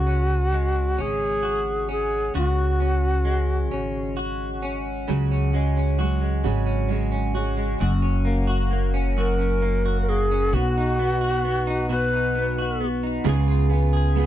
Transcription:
Already playing: C#2 C#3 F#3 F#4
0.07 C#4
0.53 G#3
0.98 G#1 C#4 G#4
1.43 F#4
1.89 C#4 G#4
2.35 C#2 C#3 F#4
2.80 C#4
3.25 G#3
3.71 G#1 C#4
4.17 F#4
4.63 C#4
5.08 C#2 C#3 F#3 G#3 C#4 F#4
5.31 C#4
5.53 G#3 C#4 F#4
5.77 C#4
5.98 F#3 G#3 C#4 F#4
6.21 G#3
6.44 G#1 C#3 F#3 G#3 C#4 F#4
6.66 C#4
6.88 F#3 G#3 C#4
6.92 F#4
7.12 C#4
7.34 G#3 C#4 F#4
7.57 G#3
7.80 F#1 F#2 F#4
8.02 C#4
8.25 A#3
8.47 F#4
8.71 A#3
8.94 C#4
9.17 F#2 F#4 A#4
9.39 C#4
9.62 A#3
9.86 F#4
10.02 A#4
10.09 A#3 G#4
10.31 C#4
10.53 B1 B2 F#4
10.78 D#4
10.99 B3
11.21 F#4
11.45 B3
11.67 D#4
11.89 B2 F#4 B4
12.13 D#4
12.35 B3
12.59 F#4
12.80 B3
13.03 D#4
13.24 C#2 C#3 G#3 B3 F4 G#4
13.48 F4
13.70 B3 F4 G#4
13.93 G#4
14.15 G#3 B3 F4 G#4

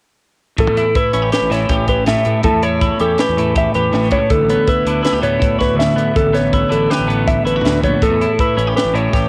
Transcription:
0.58 A1 A2 A4, kick, closed hi-hat
0.67 E2
0.77 E4, closed hi-hat
0.95 E4 B4, kick, closed hi-hat
1.13 A1 C#4 E4, closed hi-hat
1.22 G4
1.32 G4 B4, snare, closed hi-hat
1.42 A1
1.50 A2 E4 C#5, snare, closed hi-hat
1.69 A1 G4, kick, closed hi-hat
1.88 G4 B4, kick, closed hi-hat
2.06 A2 E5, snare, closed hi-hat
2.25 A2 E4, closed hi-hat
2.43 E2 A2 A4, kick, closed hi-hat
2.52 E2
2.63 E4 C#5, closed hi-hat
2.81 E4, kick, closed hi-hat
3.00 E2 C#4 G4 A4, closed hi-hat
3.18 G4 B4, snare, closed hi-hat
3.29 E2
3.37 A2 E4, closed hi-hat
3.56 G4 E5, kick, closed hi-hat
3.74 E2 G4 B4, closed hi-hat
3.92 A1 A2, snare, closed hi-hat
4.11 C#2 E4 C#5, kick, closed hi-hat
4.30 D2 A4, kick, closed hi-hat
4.40 A1
4.49 B3, closed hi-hat
4.67 E4 B4, kick, closed hi-hat
4.85 D2 D3 E4, closed hi-hat
5.03 E4 B4, snare, closed hi-hat
5.13 D2 G4
5.22 A2 B3 C#5, closed hi-hat
5.40 D2 E4, kick, closed hi-hat
5.59 F#4 B4, kick, snare, closed hi-hat
5.76 D2 E5
5.80 snare, closed hi-hat
5.96 D3 B3, closed hi-hat
6.14 A1 D2 A4, kick, closed hi-hat
6.25 A1
6.33 B3 C#5, snare, closed hi-hat
6.53 E4, kick, closed hi-hat
6.69 A1 D3 E4 A4, closed hi-hat
6.90 G4 B4, snare, closed hi-hat
6.99 A1
7.07 A2 B3, closed hi-hat
7.27 E4 E5, kick, closed hi-hat
7.44 A1 E4 B4, closed hi-hat
7.56 F#4
7.64 D2, snare, closed hi-hat
7.83 A#1 B3 C#5, kick, closed hi-hat
8.02 A1 A2 A4, kick, closed hi-hat
8.10 E2
8.21 E4, closed hi-hat
8.39 E4 B4, kick, closed hi-hat
8.57 A1 C#4 E4, closed hi-hat
8.67 G4
8.76 G4 B4, snare, closed hi-hat
8.85 A1
8.94 A2 E4 C#5, closed hi-hat
9.13 A1 G4, kick, snare, closed hi-hat

